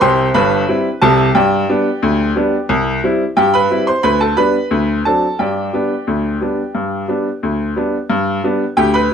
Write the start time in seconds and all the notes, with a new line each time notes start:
0.01 C2 C3 C5 G5 C6
0.34 G1 G2 B4 B5
0.68 G3 C4 E4
1.02 C2 C3 A4 A5
1.35 G2 G4 D5 G5
1.69 G3 B3 D4
2.02 D2
2.36 G3 B3 D4
2.69 C2
3.04 G3 C4 E4
3.37 G2 G4 G5
3.54 B4 B5
3.71 G3 C4 E4
3.87 C5 C6
4.03 D2 B4 B5
4.21 A4 A5
4.37 G3 B3 D4 B4 B5
4.71 D2
5.05 F#3 C4 D4 A4 A5
5.39 G2 G4 D5 G5
5.73 G3 B3 D4
6.07 D2
6.41 G3 B3 D4
6.75 G2
7.08 G3 B3 D4
7.43 D2
7.76 G3 B3 D4
8.10 G2
8.44 G3 B3 D4
8.77 D2 G4 G5
8.94 B4 B5